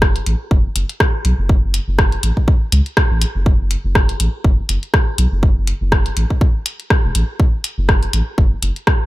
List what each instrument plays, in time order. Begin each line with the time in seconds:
Already playing: sub bass F#1
0.02 kick, cross-stick
0.16 closed hi-hat
0.26 sub bass A1, closed hi-hat
0.51 sub bass F#1, kick
0.76 sub bass F#1, closed hi-hat
0.89 closed hi-hat
1.00 kick, cross-stick
1.25 sub bass B1, closed hi-hat
1.39 sub bass F#1
1.49 kick
1.74 closed hi-hat
1.88 sub bass F#1
1.99 kick, cross-stick
2.12 closed hi-hat
2.23 sub bass A1, closed hi-hat
2.37 kick
2.48 kick
2.72 sub bass C#2, closed hi-hat
2.86 closed hi-hat
2.97 kick, cross-stick
3.11 sub bass A1
3.22 closed hi-hat
3.35 sub bass F#1
3.46 kick
3.71 closed hi-hat
3.85 sub bass F#1
3.95 kick, cross-stick
4.09 closed hi-hat
4.20 sub bass A1, closed hi-hat
4.44 sub bass F#1, kick
4.69 sub bass F#1, closed hi-hat
4.83 closed hi-hat
4.94 kick, cross-stick
5.18 sub bass B1, closed hi-hat
5.32 sub bass F#1
5.43 kick
5.67 closed hi-hat
5.81 sub bass F#1
5.92 kick, cross-stick
6.06 closed hi-hat
6.17 sub bass A1, closed hi-hat
6.30 kick
6.41 kick
6.66 closed hi-hat
6.80 closed hi-hat
6.90 kick, cross-stick
7.04 sub bass E1
7.15 sub bass A1, closed hi-hat
7.40 kick
7.64 closed hi-hat
7.78 sub bass F#1
7.89 kick, cross-stick
8.03 closed hi-hat
8.13 sub bass A1, closed hi-hat
8.38 sub bass F#1, kick
8.62 sub bass F#1, closed hi-hat
8.76 closed hi-hat
8.87 kick, cross-stick